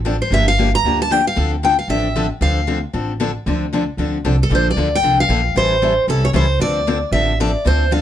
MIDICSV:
0, 0, Header, 1, 4, 480
1, 0, Start_track
1, 0, Key_signature, -1, "minor"
1, 0, Tempo, 262352
1, 558, Time_signature, 4, 2, 24, 8
1, 14664, End_track
2, 0, Start_track
2, 0, Title_t, "Steel-string acoustic guitar"
2, 0, Program_c, 0, 25
2, 396, Note_on_c, 0, 72, 57
2, 584, Note_off_c, 0, 72, 0
2, 615, Note_on_c, 0, 76, 86
2, 847, Note_off_c, 0, 76, 0
2, 877, Note_on_c, 0, 77, 80
2, 1305, Note_off_c, 0, 77, 0
2, 1372, Note_on_c, 0, 82, 85
2, 1793, Note_off_c, 0, 82, 0
2, 1862, Note_on_c, 0, 81, 81
2, 2045, Note_off_c, 0, 81, 0
2, 2045, Note_on_c, 0, 79, 74
2, 2308, Note_off_c, 0, 79, 0
2, 2330, Note_on_c, 0, 77, 83
2, 2752, Note_off_c, 0, 77, 0
2, 3011, Note_on_c, 0, 79, 78
2, 3261, Note_off_c, 0, 79, 0
2, 3268, Note_on_c, 0, 77, 67
2, 3461, Note_off_c, 0, 77, 0
2, 3476, Note_on_c, 0, 76, 84
2, 4164, Note_off_c, 0, 76, 0
2, 4432, Note_on_c, 0, 77, 78
2, 5123, Note_off_c, 0, 77, 0
2, 8105, Note_on_c, 0, 69, 70
2, 8280, Note_off_c, 0, 69, 0
2, 8323, Note_on_c, 0, 72, 83
2, 8543, Note_off_c, 0, 72, 0
2, 8609, Note_on_c, 0, 74, 71
2, 9057, Note_off_c, 0, 74, 0
2, 9064, Note_on_c, 0, 79, 85
2, 9480, Note_off_c, 0, 79, 0
2, 9519, Note_on_c, 0, 77, 92
2, 10191, Note_off_c, 0, 77, 0
2, 10198, Note_on_c, 0, 72, 85
2, 11074, Note_off_c, 0, 72, 0
2, 11156, Note_on_c, 0, 69, 83
2, 11424, Note_off_c, 0, 69, 0
2, 11429, Note_on_c, 0, 73, 82
2, 11513, Note_off_c, 0, 73, 0
2, 11634, Note_on_c, 0, 72, 73
2, 12065, Note_off_c, 0, 72, 0
2, 12102, Note_on_c, 0, 74, 82
2, 12985, Note_off_c, 0, 74, 0
2, 13035, Note_on_c, 0, 76, 86
2, 13532, Note_off_c, 0, 76, 0
2, 13550, Note_on_c, 0, 74, 70
2, 13982, Note_off_c, 0, 74, 0
2, 14037, Note_on_c, 0, 72, 82
2, 14466, Note_off_c, 0, 72, 0
2, 14493, Note_on_c, 0, 77, 69
2, 14664, Note_off_c, 0, 77, 0
2, 14664, End_track
3, 0, Start_track
3, 0, Title_t, "Steel-string acoustic guitar"
3, 0, Program_c, 1, 25
3, 89, Note_on_c, 1, 50, 75
3, 90, Note_on_c, 1, 53, 74
3, 106, Note_on_c, 1, 60, 79
3, 108, Note_on_c, 1, 62, 73
3, 109, Note_on_c, 1, 69, 87
3, 275, Note_off_c, 1, 50, 0
3, 276, Note_off_c, 1, 53, 0
3, 284, Note_off_c, 1, 60, 0
3, 285, Note_off_c, 1, 62, 0
3, 285, Note_off_c, 1, 69, 0
3, 578, Note_on_c, 1, 50, 60
3, 583, Note_on_c, 1, 53, 62
3, 589, Note_on_c, 1, 58, 65
3, 597, Note_on_c, 1, 62, 65
3, 602, Note_on_c, 1, 67, 63
3, 908, Note_off_c, 1, 50, 0
3, 910, Note_off_c, 1, 53, 0
3, 913, Note_off_c, 1, 58, 0
3, 917, Note_off_c, 1, 62, 0
3, 919, Note_off_c, 1, 67, 0
3, 1062, Note_on_c, 1, 50, 60
3, 1072, Note_on_c, 1, 53, 70
3, 1085, Note_on_c, 1, 58, 76
3, 1087, Note_on_c, 1, 67, 68
3, 1088, Note_on_c, 1, 62, 71
3, 1242, Note_off_c, 1, 50, 0
3, 1247, Note_off_c, 1, 53, 0
3, 1254, Note_off_c, 1, 58, 0
3, 1255, Note_off_c, 1, 62, 0
3, 1255, Note_off_c, 1, 67, 0
3, 1547, Note_on_c, 1, 50, 54
3, 1560, Note_on_c, 1, 53, 50
3, 1564, Note_on_c, 1, 58, 50
3, 1567, Note_on_c, 1, 62, 57
3, 1576, Note_on_c, 1, 67, 58
3, 1872, Note_off_c, 1, 50, 0
3, 1879, Note_off_c, 1, 53, 0
3, 1881, Note_off_c, 1, 58, 0
3, 1882, Note_off_c, 1, 62, 0
3, 1887, Note_off_c, 1, 67, 0
3, 2019, Note_on_c, 1, 50, 73
3, 2025, Note_on_c, 1, 53, 78
3, 2034, Note_on_c, 1, 58, 74
3, 2038, Note_on_c, 1, 67, 77
3, 2043, Note_on_c, 1, 62, 80
3, 2201, Note_off_c, 1, 50, 0
3, 2204, Note_off_c, 1, 53, 0
3, 2208, Note_off_c, 1, 58, 0
3, 2210, Note_off_c, 1, 67, 0
3, 2213, Note_off_c, 1, 62, 0
3, 2485, Note_on_c, 1, 50, 62
3, 2489, Note_on_c, 1, 53, 59
3, 2498, Note_on_c, 1, 60, 65
3, 2502, Note_on_c, 1, 62, 65
3, 2507, Note_on_c, 1, 69, 77
3, 2821, Note_off_c, 1, 50, 0
3, 2824, Note_off_c, 1, 53, 0
3, 2828, Note_off_c, 1, 60, 0
3, 2830, Note_off_c, 1, 62, 0
3, 2832, Note_off_c, 1, 69, 0
3, 2984, Note_on_c, 1, 50, 69
3, 2987, Note_on_c, 1, 60, 67
3, 2989, Note_on_c, 1, 53, 63
3, 2995, Note_on_c, 1, 62, 70
3, 3004, Note_on_c, 1, 69, 74
3, 3164, Note_off_c, 1, 50, 0
3, 3165, Note_off_c, 1, 60, 0
3, 3166, Note_off_c, 1, 53, 0
3, 3169, Note_off_c, 1, 62, 0
3, 3174, Note_off_c, 1, 69, 0
3, 3457, Note_on_c, 1, 50, 54
3, 3465, Note_on_c, 1, 60, 51
3, 3469, Note_on_c, 1, 53, 55
3, 3469, Note_on_c, 1, 62, 67
3, 3476, Note_on_c, 1, 69, 60
3, 3788, Note_off_c, 1, 50, 0
3, 3792, Note_off_c, 1, 60, 0
3, 3794, Note_off_c, 1, 53, 0
3, 3794, Note_off_c, 1, 62, 0
3, 3798, Note_off_c, 1, 69, 0
3, 3944, Note_on_c, 1, 53, 70
3, 3946, Note_on_c, 1, 50, 75
3, 3956, Note_on_c, 1, 60, 85
3, 3960, Note_on_c, 1, 69, 86
3, 3964, Note_on_c, 1, 62, 77
3, 4124, Note_off_c, 1, 53, 0
3, 4125, Note_off_c, 1, 50, 0
3, 4130, Note_off_c, 1, 60, 0
3, 4132, Note_off_c, 1, 69, 0
3, 4134, Note_off_c, 1, 62, 0
3, 4407, Note_on_c, 1, 50, 63
3, 4410, Note_on_c, 1, 53, 64
3, 4416, Note_on_c, 1, 60, 57
3, 4427, Note_on_c, 1, 62, 65
3, 4429, Note_on_c, 1, 69, 79
3, 4743, Note_off_c, 1, 50, 0
3, 4745, Note_off_c, 1, 53, 0
3, 4748, Note_off_c, 1, 60, 0
3, 4753, Note_off_c, 1, 62, 0
3, 4754, Note_off_c, 1, 69, 0
3, 4887, Note_on_c, 1, 53, 69
3, 4889, Note_on_c, 1, 50, 62
3, 4897, Note_on_c, 1, 60, 73
3, 4902, Note_on_c, 1, 62, 68
3, 4902, Note_on_c, 1, 69, 66
3, 5076, Note_off_c, 1, 53, 0
3, 5077, Note_off_c, 1, 50, 0
3, 5081, Note_off_c, 1, 60, 0
3, 5083, Note_off_c, 1, 62, 0
3, 5083, Note_off_c, 1, 69, 0
3, 5368, Note_on_c, 1, 50, 59
3, 5372, Note_on_c, 1, 53, 51
3, 5374, Note_on_c, 1, 60, 51
3, 5382, Note_on_c, 1, 69, 54
3, 5386, Note_on_c, 1, 62, 54
3, 5704, Note_off_c, 1, 50, 0
3, 5706, Note_off_c, 1, 53, 0
3, 5707, Note_off_c, 1, 60, 0
3, 5710, Note_off_c, 1, 69, 0
3, 5713, Note_off_c, 1, 62, 0
3, 5851, Note_on_c, 1, 50, 80
3, 5855, Note_on_c, 1, 53, 71
3, 5859, Note_on_c, 1, 60, 75
3, 5866, Note_on_c, 1, 62, 92
3, 5874, Note_on_c, 1, 69, 83
3, 6038, Note_off_c, 1, 50, 0
3, 6040, Note_off_c, 1, 53, 0
3, 6042, Note_off_c, 1, 60, 0
3, 6045, Note_off_c, 1, 62, 0
3, 6049, Note_off_c, 1, 69, 0
3, 6339, Note_on_c, 1, 50, 62
3, 6346, Note_on_c, 1, 53, 62
3, 6359, Note_on_c, 1, 60, 65
3, 6360, Note_on_c, 1, 62, 60
3, 6369, Note_on_c, 1, 69, 56
3, 6669, Note_off_c, 1, 50, 0
3, 6673, Note_off_c, 1, 53, 0
3, 6679, Note_off_c, 1, 60, 0
3, 6680, Note_off_c, 1, 62, 0
3, 6684, Note_off_c, 1, 69, 0
3, 6817, Note_on_c, 1, 50, 64
3, 6827, Note_on_c, 1, 53, 69
3, 6832, Note_on_c, 1, 60, 71
3, 6841, Note_on_c, 1, 62, 78
3, 6843, Note_on_c, 1, 69, 68
3, 7001, Note_off_c, 1, 50, 0
3, 7006, Note_off_c, 1, 53, 0
3, 7008, Note_off_c, 1, 60, 0
3, 7013, Note_off_c, 1, 62, 0
3, 7014, Note_off_c, 1, 69, 0
3, 7285, Note_on_c, 1, 50, 61
3, 7300, Note_on_c, 1, 53, 60
3, 7302, Note_on_c, 1, 60, 55
3, 7305, Note_on_c, 1, 62, 50
3, 7311, Note_on_c, 1, 69, 60
3, 7622, Note_off_c, 1, 50, 0
3, 7630, Note_off_c, 1, 53, 0
3, 7631, Note_off_c, 1, 60, 0
3, 7632, Note_off_c, 1, 62, 0
3, 7635, Note_off_c, 1, 69, 0
3, 7769, Note_on_c, 1, 53, 75
3, 7774, Note_on_c, 1, 50, 80
3, 7777, Note_on_c, 1, 60, 75
3, 7787, Note_on_c, 1, 62, 66
3, 7795, Note_on_c, 1, 69, 81
3, 7957, Note_off_c, 1, 53, 0
3, 7959, Note_off_c, 1, 50, 0
3, 7961, Note_off_c, 1, 60, 0
3, 7966, Note_off_c, 1, 62, 0
3, 7970, Note_off_c, 1, 69, 0
3, 8238, Note_on_c, 1, 50, 64
3, 8248, Note_on_c, 1, 53, 64
3, 8253, Note_on_c, 1, 58, 60
3, 8261, Note_on_c, 1, 62, 59
3, 8266, Note_on_c, 1, 69, 75
3, 8579, Note_off_c, 1, 50, 0
3, 8584, Note_off_c, 1, 53, 0
3, 8586, Note_off_c, 1, 58, 0
3, 8591, Note_off_c, 1, 62, 0
3, 8593, Note_off_c, 1, 69, 0
3, 8721, Note_on_c, 1, 50, 65
3, 8732, Note_on_c, 1, 53, 62
3, 8736, Note_on_c, 1, 58, 65
3, 8742, Note_on_c, 1, 69, 65
3, 8744, Note_on_c, 1, 62, 69
3, 8913, Note_off_c, 1, 50, 0
3, 8918, Note_off_c, 1, 53, 0
3, 8920, Note_off_c, 1, 58, 0
3, 8923, Note_off_c, 1, 69, 0
3, 8924, Note_off_c, 1, 62, 0
3, 9200, Note_on_c, 1, 50, 51
3, 9210, Note_on_c, 1, 53, 60
3, 9215, Note_on_c, 1, 58, 54
3, 9220, Note_on_c, 1, 62, 62
3, 9229, Note_on_c, 1, 69, 57
3, 9540, Note_off_c, 1, 50, 0
3, 9545, Note_off_c, 1, 53, 0
3, 9547, Note_off_c, 1, 58, 0
3, 9550, Note_off_c, 1, 62, 0
3, 9554, Note_off_c, 1, 69, 0
3, 9674, Note_on_c, 1, 50, 77
3, 9687, Note_on_c, 1, 53, 67
3, 9691, Note_on_c, 1, 58, 73
3, 9695, Note_on_c, 1, 62, 82
3, 9700, Note_on_c, 1, 69, 80
3, 9869, Note_off_c, 1, 50, 0
3, 9876, Note_off_c, 1, 53, 0
3, 9878, Note_off_c, 1, 58, 0
3, 9880, Note_off_c, 1, 62, 0
3, 9882, Note_off_c, 1, 69, 0
3, 10166, Note_on_c, 1, 52, 64
3, 10171, Note_on_c, 1, 55, 61
3, 10178, Note_on_c, 1, 61, 64
3, 10186, Note_on_c, 1, 64, 64
3, 10187, Note_on_c, 1, 69, 68
3, 10503, Note_off_c, 1, 52, 0
3, 10505, Note_off_c, 1, 55, 0
3, 10509, Note_off_c, 1, 61, 0
3, 10513, Note_off_c, 1, 64, 0
3, 10513, Note_off_c, 1, 69, 0
3, 10646, Note_on_c, 1, 52, 54
3, 10648, Note_on_c, 1, 55, 74
3, 10659, Note_on_c, 1, 61, 68
3, 10666, Note_on_c, 1, 64, 64
3, 10668, Note_on_c, 1, 69, 76
3, 10835, Note_off_c, 1, 52, 0
3, 10836, Note_off_c, 1, 55, 0
3, 10842, Note_off_c, 1, 61, 0
3, 10845, Note_off_c, 1, 64, 0
3, 10846, Note_off_c, 1, 69, 0
3, 11123, Note_on_c, 1, 52, 53
3, 11131, Note_on_c, 1, 55, 57
3, 11135, Note_on_c, 1, 61, 52
3, 11137, Note_on_c, 1, 64, 56
3, 11142, Note_on_c, 1, 69, 55
3, 11461, Note_off_c, 1, 52, 0
3, 11465, Note_off_c, 1, 55, 0
3, 11467, Note_off_c, 1, 61, 0
3, 11468, Note_off_c, 1, 64, 0
3, 11471, Note_off_c, 1, 69, 0
3, 11585, Note_on_c, 1, 52, 78
3, 11588, Note_on_c, 1, 55, 71
3, 11599, Note_on_c, 1, 61, 83
3, 11600, Note_on_c, 1, 64, 90
3, 11609, Note_on_c, 1, 69, 92
3, 11785, Note_off_c, 1, 52, 0
3, 11786, Note_off_c, 1, 55, 0
3, 11791, Note_off_c, 1, 61, 0
3, 11792, Note_off_c, 1, 64, 0
3, 11796, Note_off_c, 1, 69, 0
3, 12076, Note_on_c, 1, 50, 59
3, 12091, Note_on_c, 1, 53, 60
3, 12093, Note_on_c, 1, 62, 61
3, 12094, Note_on_c, 1, 60, 63
3, 12098, Note_on_c, 1, 69, 73
3, 12417, Note_off_c, 1, 50, 0
3, 12425, Note_off_c, 1, 53, 0
3, 12426, Note_off_c, 1, 60, 0
3, 12426, Note_off_c, 1, 62, 0
3, 12428, Note_off_c, 1, 69, 0
3, 12570, Note_on_c, 1, 53, 66
3, 12572, Note_on_c, 1, 50, 68
3, 12581, Note_on_c, 1, 60, 84
3, 12581, Note_on_c, 1, 62, 68
3, 12587, Note_on_c, 1, 69, 81
3, 12757, Note_off_c, 1, 53, 0
3, 12758, Note_off_c, 1, 50, 0
3, 12762, Note_off_c, 1, 60, 0
3, 12762, Note_off_c, 1, 62, 0
3, 12766, Note_off_c, 1, 69, 0
3, 13060, Note_on_c, 1, 50, 63
3, 13063, Note_on_c, 1, 60, 61
3, 13067, Note_on_c, 1, 53, 64
3, 13068, Note_on_c, 1, 62, 56
3, 13081, Note_on_c, 1, 69, 63
3, 13389, Note_off_c, 1, 50, 0
3, 13391, Note_off_c, 1, 60, 0
3, 13393, Note_off_c, 1, 53, 0
3, 13393, Note_off_c, 1, 62, 0
3, 13400, Note_off_c, 1, 69, 0
3, 13538, Note_on_c, 1, 50, 74
3, 13542, Note_on_c, 1, 53, 83
3, 13547, Note_on_c, 1, 60, 70
3, 13549, Note_on_c, 1, 62, 83
3, 13561, Note_on_c, 1, 69, 85
3, 13721, Note_off_c, 1, 50, 0
3, 13723, Note_off_c, 1, 53, 0
3, 13725, Note_off_c, 1, 60, 0
3, 13726, Note_off_c, 1, 62, 0
3, 13732, Note_off_c, 1, 69, 0
3, 13990, Note_on_c, 1, 50, 59
3, 14003, Note_on_c, 1, 53, 61
3, 14010, Note_on_c, 1, 60, 66
3, 14011, Note_on_c, 1, 62, 71
3, 14022, Note_on_c, 1, 69, 65
3, 14334, Note_off_c, 1, 50, 0
3, 14340, Note_off_c, 1, 53, 0
3, 14344, Note_off_c, 1, 60, 0
3, 14344, Note_off_c, 1, 62, 0
3, 14350, Note_off_c, 1, 69, 0
3, 14473, Note_on_c, 1, 50, 62
3, 14479, Note_on_c, 1, 53, 63
3, 14482, Note_on_c, 1, 60, 66
3, 14492, Note_on_c, 1, 62, 74
3, 14495, Note_on_c, 1, 69, 65
3, 14664, Note_off_c, 1, 50, 0
3, 14664, Note_off_c, 1, 53, 0
3, 14664, Note_off_c, 1, 60, 0
3, 14664, Note_off_c, 1, 62, 0
3, 14664, Note_off_c, 1, 69, 0
3, 14664, End_track
4, 0, Start_track
4, 0, Title_t, "Upright bass"
4, 0, Program_c, 2, 32
4, 0, Note_on_c, 2, 33, 65
4, 366, Note_off_c, 2, 33, 0
4, 557, Note_on_c, 2, 31, 83
4, 1326, Note_off_c, 2, 31, 0
4, 1517, Note_on_c, 2, 38, 62
4, 2286, Note_off_c, 2, 38, 0
4, 2498, Note_on_c, 2, 38, 82
4, 3259, Note_off_c, 2, 38, 0
4, 3436, Note_on_c, 2, 33, 70
4, 4206, Note_off_c, 2, 33, 0
4, 4406, Note_on_c, 2, 38, 83
4, 5172, Note_off_c, 2, 38, 0
4, 5373, Note_on_c, 2, 33, 71
4, 6137, Note_off_c, 2, 33, 0
4, 6334, Note_on_c, 2, 38, 85
4, 7097, Note_off_c, 2, 38, 0
4, 7270, Note_on_c, 2, 38, 65
4, 7683, Note_off_c, 2, 38, 0
4, 7766, Note_on_c, 2, 36, 76
4, 8172, Note_off_c, 2, 36, 0
4, 8222, Note_on_c, 2, 34, 76
4, 8614, Note_off_c, 2, 34, 0
4, 8709, Note_on_c, 2, 38, 79
4, 9122, Note_off_c, 2, 38, 0
4, 9178, Note_on_c, 2, 36, 60
4, 9596, Note_off_c, 2, 36, 0
4, 9669, Note_on_c, 2, 34, 76
4, 10082, Note_off_c, 2, 34, 0
4, 10149, Note_on_c, 2, 33, 71
4, 10922, Note_off_c, 2, 33, 0
4, 11114, Note_on_c, 2, 36, 68
4, 11525, Note_off_c, 2, 36, 0
4, 11593, Note_on_c, 2, 37, 81
4, 12004, Note_off_c, 2, 37, 0
4, 12062, Note_on_c, 2, 38, 78
4, 12837, Note_off_c, 2, 38, 0
4, 13014, Note_on_c, 2, 33, 76
4, 13792, Note_off_c, 2, 33, 0
4, 14003, Note_on_c, 2, 38, 78
4, 14664, Note_off_c, 2, 38, 0
4, 14664, End_track
0, 0, End_of_file